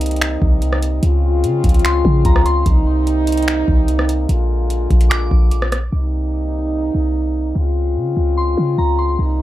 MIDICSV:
0, 0, Header, 1, 5, 480
1, 0, Start_track
1, 0, Key_signature, -3, "minor"
1, 0, Tempo, 408163
1, 1208, Time_signature, 4, 2, 24, 8
1, 11078, End_track
2, 0, Start_track
2, 0, Title_t, "Synth bell"
2, 0, Program_c, 0, 98
2, 2174, Note_on_c, 0, 84, 88
2, 2622, Note_off_c, 0, 84, 0
2, 2654, Note_on_c, 0, 82, 81
2, 2879, Note_off_c, 0, 82, 0
2, 2889, Note_on_c, 0, 84, 87
2, 3116, Note_off_c, 0, 84, 0
2, 5995, Note_on_c, 0, 86, 83
2, 6452, Note_off_c, 0, 86, 0
2, 9849, Note_on_c, 0, 84, 85
2, 10299, Note_off_c, 0, 84, 0
2, 10329, Note_on_c, 0, 82, 75
2, 10556, Note_off_c, 0, 82, 0
2, 10567, Note_on_c, 0, 84, 77
2, 10795, Note_off_c, 0, 84, 0
2, 11078, End_track
3, 0, Start_track
3, 0, Title_t, "French horn section"
3, 0, Program_c, 1, 60
3, 0, Note_on_c, 1, 48, 78
3, 0, Note_on_c, 1, 55, 75
3, 0, Note_on_c, 1, 58, 76
3, 0, Note_on_c, 1, 63, 87
3, 1158, Note_off_c, 1, 58, 0
3, 1190, Note_off_c, 1, 48, 0
3, 1190, Note_off_c, 1, 55, 0
3, 1190, Note_off_c, 1, 63, 0
3, 1211, Note_on_c, 1, 49, 82
3, 1212, Note_on_c, 1, 56, 74
3, 1212, Note_on_c, 1, 60, 74
3, 1212, Note_on_c, 1, 65, 86
3, 3110, Note_off_c, 1, 49, 0
3, 3111, Note_off_c, 1, 56, 0
3, 3111, Note_off_c, 1, 60, 0
3, 3111, Note_off_c, 1, 65, 0
3, 3130, Note_on_c, 1, 58, 73
3, 3132, Note_on_c, 1, 55, 72
3, 3132, Note_on_c, 1, 63, 88
3, 3133, Note_on_c, 1, 48, 85
3, 5030, Note_off_c, 1, 55, 0
3, 5030, Note_off_c, 1, 63, 0
3, 5031, Note_off_c, 1, 48, 0
3, 5053, Note_on_c, 1, 56, 71
3, 5053, Note_on_c, 1, 65, 87
3, 5055, Note_on_c, 1, 50, 79
3, 6771, Note_off_c, 1, 50, 0
3, 6771, Note_off_c, 1, 56, 0
3, 6771, Note_off_c, 1, 58, 0
3, 6771, Note_off_c, 1, 65, 0
3, 6971, Note_on_c, 1, 58, 66
3, 6972, Note_on_c, 1, 48, 72
3, 6972, Note_on_c, 1, 55, 67
3, 6973, Note_on_c, 1, 63, 82
3, 8870, Note_off_c, 1, 48, 0
3, 8870, Note_off_c, 1, 58, 0
3, 8871, Note_off_c, 1, 55, 0
3, 8871, Note_off_c, 1, 63, 0
3, 8889, Note_on_c, 1, 60, 70
3, 8889, Note_on_c, 1, 65, 79
3, 8890, Note_on_c, 1, 49, 76
3, 8890, Note_on_c, 1, 56, 67
3, 10789, Note_off_c, 1, 49, 0
3, 10789, Note_off_c, 1, 60, 0
3, 10789, Note_off_c, 1, 65, 0
3, 10790, Note_off_c, 1, 56, 0
3, 10809, Note_on_c, 1, 63, 82
3, 10810, Note_on_c, 1, 48, 76
3, 10812, Note_on_c, 1, 55, 69
3, 10812, Note_on_c, 1, 58, 71
3, 11078, Note_off_c, 1, 48, 0
3, 11078, Note_off_c, 1, 55, 0
3, 11078, Note_off_c, 1, 58, 0
3, 11078, Note_off_c, 1, 63, 0
3, 11078, End_track
4, 0, Start_track
4, 0, Title_t, "808-style bass"
4, 0, Program_c, 2, 38
4, 0, Note_on_c, 2, 36, 114
4, 442, Note_off_c, 2, 36, 0
4, 492, Note_on_c, 2, 36, 104
4, 1181, Note_off_c, 2, 36, 0
4, 1208, Note_on_c, 2, 37, 111
4, 1689, Note_on_c, 2, 49, 100
4, 1706, Note_off_c, 2, 37, 0
4, 1916, Note_off_c, 2, 49, 0
4, 1930, Note_on_c, 2, 37, 100
4, 2390, Note_off_c, 2, 37, 0
4, 2410, Note_on_c, 2, 49, 110
4, 2639, Note_off_c, 2, 49, 0
4, 2647, Note_on_c, 2, 37, 109
4, 3108, Note_off_c, 2, 37, 0
4, 3129, Note_on_c, 2, 36, 118
4, 4281, Note_off_c, 2, 36, 0
4, 4329, Note_on_c, 2, 36, 110
4, 5020, Note_off_c, 2, 36, 0
4, 5047, Note_on_c, 2, 34, 112
4, 5738, Note_off_c, 2, 34, 0
4, 5769, Note_on_c, 2, 34, 103
4, 6229, Note_off_c, 2, 34, 0
4, 6249, Note_on_c, 2, 34, 103
4, 6939, Note_off_c, 2, 34, 0
4, 6969, Note_on_c, 2, 36, 113
4, 8121, Note_off_c, 2, 36, 0
4, 8169, Note_on_c, 2, 36, 99
4, 8859, Note_off_c, 2, 36, 0
4, 8886, Note_on_c, 2, 37, 106
4, 9367, Note_on_c, 2, 49, 99
4, 9384, Note_off_c, 2, 37, 0
4, 9595, Note_off_c, 2, 49, 0
4, 9605, Note_on_c, 2, 37, 103
4, 10067, Note_off_c, 2, 37, 0
4, 10084, Note_on_c, 2, 49, 104
4, 10316, Note_off_c, 2, 49, 0
4, 10327, Note_on_c, 2, 37, 107
4, 10788, Note_off_c, 2, 37, 0
4, 10807, Note_on_c, 2, 36, 110
4, 11078, Note_off_c, 2, 36, 0
4, 11078, End_track
5, 0, Start_track
5, 0, Title_t, "Drums"
5, 13, Note_on_c, 9, 42, 78
5, 71, Note_off_c, 9, 42, 0
5, 71, Note_on_c, 9, 42, 69
5, 131, Note_off_c, 9, 42, 0
5, 131, Note_on_c, 9, 42, 55
5, 192, Note_off_c, 9, 42, 0
5, 192, Note_on_c, 9, 42, 45
5, 253, Note_off_c, 9, 42, 0
5, 253, Note_on_c, 9, 26, 126
5, 253, Note_on_c, 9, 42, 78
5, 371, Note_off_c, 9, 26, 0
5, 371, Note_off_c, 9, 42, 0
5, 491, Note_on_c, 9, 36, 98
5, 608, Note_off_c, 9, 36, 0
5, 728, Note_on_c, 9, 42, 74
5, 845, Note_off_c, 9, 42, 0
5, 854, Note_on_c, 9, 37, 89
5, 970, Note_on_c, 9, 42, 82
5, 971, Note_off_c, 9, 37, 0
5, 1088, Note_off_c, 9, 42, 0
5, 1208, Note_on_c, 9, 42, 72
5, 1326, Note_off_c, 9, 42, 0
5, 1691, Note_on_c, 9, 42, 75
5, 1809, Note_off_c, 9, 42, 0
5, 1929, Note_on_c, 9, 42, 78
5, 1930, Note_on_c, 9, 36, 107
5, 1989, Note_off_c, 9, 42, 0
5, 1989, Note_on_c, 9, 42, 64
5, 2047, Note_off_c, 9, 36, 0
5, 2051, Note_off_c, 9, 42, 0
5, 2051, Note_on_c, 9, 42, 55
5, 2110, Note_off_c, 9, 42, 0
5, 2110, Note_on_c, 9, 42, 45
5, 2172, Note_off_c, 9, 42, 0
5, 2172, Note_on_c, 9, 26, 126
5, 2172, Note_on_c, 9, 42, 80
5, 2289, Note_off_c, 9, 26, 0
5, 2289, Note_off_c, 9, 42, 0
5, 2410, Note_on_c, 9, 36, 95
5, 2527, Note_off_c, 9, 36, 0
5, 2646, Note_on_c, 9, 42, 76
5, 2647, Note_on_c, 9, 36, 110
5, 2763, Note_off_c, 9, 42, 0
5, 2765, Note_off_c, 9, 36, 0
5, 2773, Note_on_c, 9, 37, 93
5, 2889, Note_on_c, 9, 42, 76
5, 2890, Note_off_c, 9, 37, 0
5, 3007, Note_off_c, 9, 42, 0
5, 3128, Note_on_c, 9, 42, 73
5, 3129, Note_on_c, 9, 36, 112
5, 3246, Note_off_c, 9, 36, 0
5, 3246, Note_off_c, 9, 42, 0
5, 3610, Note_on_c, 9, 42, 72
5, 3728, Note_off_c, 9, 42, 0
5, 3849, Note_on_c, 9, 42, 77
5, 3909, Note_off_c, 9, 42, 0
5, 3909, Note_on_c, 9, 42, 68
5, 3969, Note_off_c, 9, 42, 0
5, 3969, Note_on_c, 9, 42, 55
5, 4028, Note_off_c, 9, 42, 0
5, 4028, Note_on_c, 9, 42, 45
5, 4090, Note_off_c, 9, 42, 0
5, 4090, Note_on_c, 9, 26, 125
5, 4090, Note_on_c, 9, 42, 77
5, 4208, Note_off_c, 9, 26, 0
5, 4208, Note_off_c, 9, 42, 0
5, 4329, Note_on_c, 9, 36, 99
5, 4446, Note_off_c, 9, 36, 0
5, 4565, Note_on_c, 9, 42, 77
5, 4683, Note_off_c, 9, 42, 0
5, 4692, Note_on_c, 9, 37, 90
5, 4810, Note_off_c, 9, 37, 0
5, 4810, Note_on_c, 9, 42, 80
5, 4928, Note_off_c, 9, 42, 0
5, 5048, Note_on_c, 9, 42, 69
5, 5165, Note_off_c, 9, 42, 0
5, 5529, Note_on_c, 9, 42, 76
5, 5647, Note_off_c, 9, 42, 0
5, 5768, Note_on_c, 9, 42, 46
5, 5769, Note_on_c, 9, 36, 102
5, 5886, Note_off_c, 9, 42, 0
5, 5887, Note_off_c, 9, 36, 0
5, 5888, Note_on_c, 9, 42, 78
5, 6006, Note_off_c, 9, 42, 0
5, 6010, Note_on_c, 9, 26, 125
5, 6010, Note_on_c, 9, 42, 78
5, 6127, Note_off_c, 9, 26, 0
5, 6127, Note_off_c, 9, 42, 0
5, 6249, Note_on_c, 9, 36, 101
5, 6367, Note_off_c, 9, 36, 0
5, 6485, Note_on_c, 9, 42, 74
5, 6603, Note_off_c, 9, 42, 0
5, 6612, Note_on_c, 9, 37, 90
5, 6729, Note_off_c, 9, 37, 0
5, 6729, Note_on_c, 9, 42, 82
5, 6731, Note_on_c, 9, 37, 91
5, 6846, Note_off_c, 9, 42, 0
5, 6848, Note_off_c, 9, 37, 0
5, 11078, End_track
0, 0, End_of_file